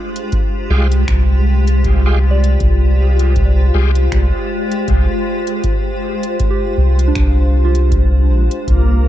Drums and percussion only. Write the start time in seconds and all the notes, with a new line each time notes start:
0.16 closed hi-hat
0.32 kick, closed hi-hat
0.92 closed hi-hat
1.08 finger snap, kick, closed hi-hat
1.67 closed hi-hat
1.84 kick, closed hi-hat
2.44 closed hi-hat
2.60 kick, closed hi-hat
3.19 closed hi-hat
3.36 kick, closed hi-hat
3.95 closed hi-hat
4.12 finger snap, kick, closed hi-hat
4.72 closed hi-hat
4.88 kick, closed hi-hat
5.47 closed hi-hat
5.64 kick, closed hi-hat
6.23 closed hi-hat
6.39 kick, closed hi-hat
6.99 closed hi-hat
7.15 finger snap, kick, closed hi-hat
7.75 closed hi-hat
7.92 kick, closed hi-hat
8.51 closed hi-hat
8.68 kick, closed hi-hat